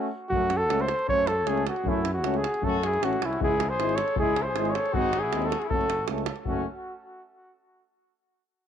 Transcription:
Already playing: C#4 F#4
0.29 F#2 A3 C#4 F#4, davul low
0.50 davul high
0.57 A4
0.69 C#2 A3 C#4, davul high
0.80 C5, davul high
0.88 davul high
0.99 davul high
1.08 F#2 A3 C#4 C#5, davul low
1.27 A4, davul high
1.46 C#2 A3 C#4 G#4, davul high
1.57 davul high
1.67 F#4, davul high
1.76 davul high
1.84 F#2 A3 C#4, davul low
1.89 E4
2.05 davul high
2.13 F#4
2.24 C#2 A3 C#4, davul high
2.34 G#4, davul high
2.44 davul high
2.54 davul high
2.62 F#2 A3 C#4 A4, davul low
2.66 F#4
2.74 davul high
2.83 E4 G#4, davul high
2.94 davul high
3.00 A1 A3 C#4 F#4, davul high
3.13 davul high
3.20 C2, davul high
3.24 C#4 E4
3.33 davul high
3.40 C#2 G#3 E4 G#4, davul low
3.60 davul high
3.69 G#4 C5
3.79 G#1 G#3 E4, davul high
3.89 davul high
3.95 A4 C#5, davul high
4.08 davul high
4.16 C#2 G#3 E4 G#4, davul low
4.21 E4
4.36 davul high
4.42 G#4 C5
4.54 G#1 G#3 E4, davul high
4.65 davul high
4.70 A4 C#5
4.75 davul high
4.86 davul high
4.93 G#1 G#3 C4 F#4, davul low
4.98 D#4
5.13 davul high
5.19 E4 G#4
5.32 D#2 G#3 C4, davul high
5.42 A4, davul high
5.48 F#4
5.52 davul high
5.59 G#4, davul high
5.64 E4
5.69 F#1 A3 C#4 A4, davul low
5.73 F#4
5.81 davul high
5.90 davul high
6.08 C#2 A3 C#4, davul high
6.18 davul high
6.26 davul high
6.36 davul high
6.45 F#1 A3 C#4 F#4, davul low

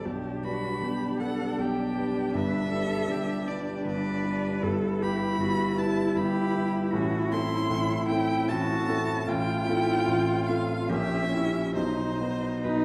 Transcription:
0.05 B1 B2 D4 G4
0.43 G3 D4 F#4 B4 B5
0.81 B1 B2 G4
1.20 G3 D4 A4 B4 F#5
1.58 B1 B2 G4 G5
1.97 G3 D4 B4
2.34 G1 G2 B4 E5
2.72 G3 D4 A4 B4
3.09 G1 G2 G4
3.47 G3 D4 B4 D5
3.85 G1 G2 B4 D5
4.24 G3 D4
4.62 G1 G2 E4 A4
5.02 G3 E4 G4 B4 B5
5.39 G1 G2 F#4
5.78 G3 E4 B4 A5
6.16 G1 G2 G4 B5
6.55 G3 E4 B4
6.93 A1 A2 F#4
7.32 C4 E4 A4 C6
7.70 A1 A2 E4
8.09 C4 E4 A4 G5
8.49 A1 A2 F#4 A5
8.88 C4 E4 A4
9.28 A1 A2 F4 G5
9.67 C4 E4 F4 A4
10.07 A1 A2 F4
10.47 C4 F4 A4 F5
10.89 A#1 A#2 C#4 G4 E5
11.33 C#4 E4 G4
11.75 B1 B2 D#4 C5
12.20 B3 D#4 F#4
12.64 B1 B2 D#4 B4

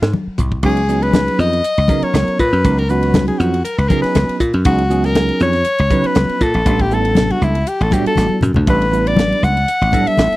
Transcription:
Already playing: F4
0.02 G#2, snare
0.13 high tom, high conga
0.27 muted slap bass stroke
0.38 C2, hi-hat pedal, mid tom, muted conga
0.52 kick
0.63 C#2 F#3 B3 C#4 D#4 G#4, kick, crash
0.77 ride
0.88 F#3 B3 C#4 D#4 G#4, hi-hat pedal, muted conga
1.02 B4, ride
1.14 snare, hi-hat pedal, ride, high conga
1.28 ride
1.39 F2 D#5, hi-hat pedal
1.53 ride
1.63 hi-hat pedal, ride, muted conga
1.78 C#2, ride
1.88 C#3 F#3 B3 C#4 D#4 A#4, kick, hi-hat pedal, high conga
2.02 C#5, muted slap bass stroke, ride
2.14 C#2, snare, hi-hat pedal, ride, high conga
2.28 muted slap bass stroke, ride
2.38 A#2 B4, kick, hi-hat pedal, muted conga
2.53 F#2, ride
2.63 C#2 F#3 B3 C#4 D#4 A#4, kick, hi-hat pedal, ride, muted conga
2.78 A#4, ride
2.89 F#3 B3 C#4 D#4 F#4 B4, hi-hat pedal, muted conga
3.03 ride
3.14 snare, hi-hat pedal, ride, high conga, low conga
3.28 G#4, ride
3.39 F2 F#4, hi-hat pedal
3.54 ride
3.64 A#4, hi-hat pedal, ride, muted conga
3.78 C#2 B4, ride
3.88 C#3 F#3 B3 C#4 D#4 G#4 A#4, kick, hi-hat pedal, high conga
4.02 B4, muted slap bass stroke, snare, ride
4.15 C#2, snare, hi-hat pedal, ride, high conga
4.29 ride
4.40 A#2, kick, hi-hat pedal, muted conga
4.53 F#2, ride
4.65 C#2 F#3 B3 C#4 D#4 F#4 G#4, kick, hi-hat pedal, ride
4.78 ride
4.90 F#3 B3 C#4 D#4 G#4, hi-hat pedal, muted conga
5.04 A#4, snare, ride
5.15 snare, hi-hat pedal, ride, high conga
5.29 ride
5.40 F2 C#5, hi-hat pedal
5.53 snare, ride
5.64 hi-hat pedal, ride, muted conga
5.78 C#2, ride
5.90 C#3 F#3 B3 C#4 D#4 B4, kick, hi-hat pedal, high conga
6.04 B4, muted slap bass stroke, ride
6.15 C#2, snare, hi-hat pedal, ride, high conga
6.29 muted slap bass stroke, ride
6.40 A#2 A4, kick, snare, hi-hat pedal, muted conga
6.54 A#1, ride
6.66 A1 G3 B3 D4 E4 A4, kick, hi-hat pedal, ride
6.79 G4, kick, ride
6.91 G3 B3 D4 E4 A4, hi-hat pedal, muted conga
7.05 ride
7.15 snare, hi-hat pedal, ride, high conga, low conga
7.30 F#4, ride
7.41 C#2 E4, hi-hat pedal
7.55 ride
7.66 G4, hi-hat pedal, ride, muted conga
7.81 A1 A4, ride
7.91 A2 G3 B3 D4 E4 F#4 G4, kick, hi-hat pedal, high conga
8.06 A4, muted slap bass stroke, ride
8.16 A1, snare, hi-hat pedal, high conga
8.29 high conga
8.41 F#2, hi-hat pedal, mid tom, low conga
8.54 D2, floor tom, low conga
8.66 A1 G3 B3 D4 E4 A4 B4, kick, hi-hat pedal, ride, muted conga
8.82 ride
8.92 G3 B3 D4 E4 B4, hi-hat pedal, muted conga
9.07 D5, ride
9.17 snare, hi-hat pedal, ride, high conga
9.32 ride
9.43 C#2 F#5, hi-hat pedal
9.57 ride
9.67 hi-hat pedal, ride, muted conga
9.81 A1, ride
9.92 A2 G3 B3 D4 E4 A4, kick, hi-hat pedal, high conga
10.07 E5, muted slap bass stroke, ride
10.17 A1, snare, hi-hat pedal, ride, high conga
10.32 muted slap bass stroke, ride

